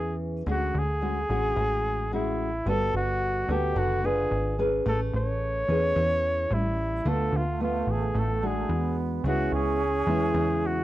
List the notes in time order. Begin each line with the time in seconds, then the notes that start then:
Already playing: E2 E3 C#4 G#4 B4
0.46 D2 D3 G#3 C#4 F#4
0.51 F#4
0.74 D2 G#4
1.01 G#3 C#4 F#4
1.29 A1 G#3 C#4 F#4
1.56 A1 A2
2.12 G#3 C#4 E4 F#4
2.66 G1 G3 B3 F#4 A4
2.94 G1 F#4
3.49 D2 B3 F#4 G4 A4
3.76 F#1 D3 F#4
4.04 D4 F4 G#4 B4
4.31 G#1
4.58 C#4 G#4 B4
4.86 A1 A3 A4
5.13 A1 C#5
5.68 E2 C#4 G#4 B4
5.96 E2 E3
6.50 A1 G3 C#4 E4
7.05 D2 D3 A3 B3 F4 A4
7.32 D2
7.36 F4
7.60 A3 B3 F4
7.87 A1 G#4
8.15 A1 A2
8.19 A4
8.42 G#3 D4 F#4
8.46 G#4
8.69 E2 B3
9.24 C#2 C#3 G#3 B3 C#4 E4 F#4
9.52 C#2 G#4
10.07 E2 G#3 B3 E4
10.34 E2 C#3
10.66 F#4